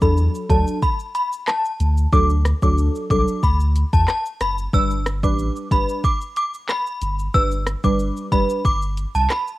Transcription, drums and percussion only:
0.02 kick, shaker
0.17 shaker
0.35 shaker
0.49 kick, closed hi-hat, shaker
0.67 shaker
0.82 kick, shaker
0.99 shaker
1.15 closed hi-hat, shaker
1.32 shaker
1.47 cross-stick, clap, shaker
1.65 shaker
1.80 closed hi-hat, shaker
1.97 shaker
2.13 kick, shaker
2.30 shaker
2.45 cross-stick, closed hi-hat, shaker
2.62 kick, shaker
2.78 shaker
2.95 shaker
3.10 kick, closed hi-hat, shaker
3.28 shaker
3.43 kick, shaker
3.60 shaker
3.76 closed hi-hat, shaker
3.93 kick, shaker
4.08 cross-stick, clap, shaker
4.26 shaker
4.41 cross-stick, closed hi-hat, shaker
4.58 shaker
4.74 kick, shaker
4.91 shaker
5.06 cross-stick, closed hi-hat, shaker
5.23 kick, shaker
5.39 shaker
5.56 shaker
5.71 kick, closed hi-hat, shaker
5.89 shaker
6.04 kick, shaker
6.21 shaker
6.36 closed hi-hat, shaker
6.54 shaker
6.69 cross-stick, clap, shaker
6.86 shaker
7.02 closed hi-hat, shaker
7.19 shaker
7.34 kick, shaker
7.51 shaker
7.67 cross-stick, closed hi-hat, shaker
7.84 kick, shaker
7.99 shaker
8.17 shaker
8.32 kick, closed hi-hat, shaker
8.50 shaker
8.65 kick, shaker
8.82 shaker
8.97 closed hi-hat, shaker
9.15 shaker
9.30 cross-stick, clap, shaker
9.47 shaker

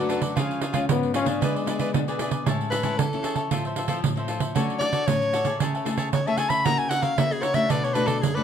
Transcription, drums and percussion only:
0.10 pandeiro
0.22 pandeiro
0.37 pandeiro
0.51 pandeiro
0.61 pandeiro
0.74 pandeiro
0.89 pandeiro
1.03 pandeiro
1.14 pandeiro
1.26 pandeiro
1.42 pandeiro
1.56 pandeiro
1.67 pandeiro
1.79 pandeiro
1.94 pandeiro
2.08 pandeiro
2.19 pandeiro
2.31 pandeiro
2.46 pandeiro
2.61 pandeiro
2.72 pandeiro
2.83 pandeiro
2.99 pandeiro
3.13 pandeiro
3.24 pandeiro
3.36 pandeiro
3.51 pandeiro
3.65 pandeiro
3.76 pandeiro
3.88 pandeiro
4.04 pandeiro
4.17 pandeiro
4.28 pandeiro
4.40 pandeiro
4.56 pandeiro
4.70 pandeiro
4.81 pandeiro
4.93 pandeiro
5.08 pandeiro
5.22 pandeiro
5.33 pandeiro
5.45 pandeiro
5.60 pandeiro
5.75 pandeiro
5.86 pandeiro
5.98 pandeiro
6.13 pandeiro
6.27 pandeiro
6.38 pandeiro
6.50 pandeiro
6.66 pandeiro
6.79 pandeiro
6.91 pandeiro
7.03 pandeiro
7.18 pandeiro
7.32 pandeiro
7.43 pandeiro
7.54 pandeiro
7.70 pandeiro
7.84 pandeiro
7.95 pandeiro
8.08 pandeiro
8.23 pandeiro
8.37 pandeiro

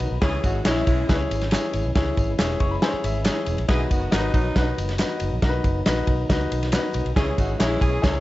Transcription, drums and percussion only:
0.00 ride
0.22 kick, snare, ride
0.44 kick, ride, tambourine
0.65 snare, clap, ride, tambourine
0.87 kick, ride, tambourine
1.09 kick, snare, ride, tambourine
1.31 ride, tambourine
1.41 snare, ride
1.51 snare, clap, ride, tambourine
1.73 ride, tambourine
1.95 kick, snare, ride, tambourine
2.17 kick, ride, tambourine
2.39 snare, clap, ride, tambourine
2.60 kick, ride
2.82 snare, ride, tambourine
3.04 ride, tambourine
3.24 snare, clap, ride, tambourine
3.46 ride, tambourine
3.58 ride
3.69 kick, snare, ride
3.91 kick, ride, tambourine
4.12 snare, clap, ride, tambourine
4.34 kick, ride, tambourine
4.56 kick, snare, ride, tambourine
4.78 ride, tambourine
4.89 snare, ride
4.98 snare, clap, ride, tambourine
5.20 ride, tambourine
5.42 kick, snare, ride
5.64 kick, ride, tambourine
5.86 snare, clap, ride, tambourine
6.07 kick, ride
6.30 kick, snare, ride, tambourine
6.52 ride, tambourine
6.63 snare, ride
6.72 snare, clap, ride, tambourine
6.93 ride, tambourine
7.06 ride
7.16 kick, snare, ride, tambourine
7.38 kick, ride, tambourine
7.60 snare, clap, ride, tambourine
7.81 kick, ride, tambourine
8.04 kick, snare, ride, tambourine

